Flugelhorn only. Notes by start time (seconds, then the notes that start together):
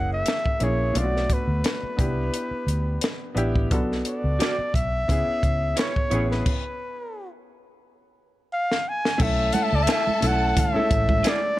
Already playing: F#5
0.13 E5
0.64 C#5
0.98 D5
1.33 B4
4.08 D5
4.75 E5
5.78 C#5
6.31 B4
8.53 F5
8.89 G#5
9.22 E5
9.54 F#5
9.64 E5
9.75 D5
9.83 E5
9.92 E5
10.27 F#5
10.60 E5
11.29 D5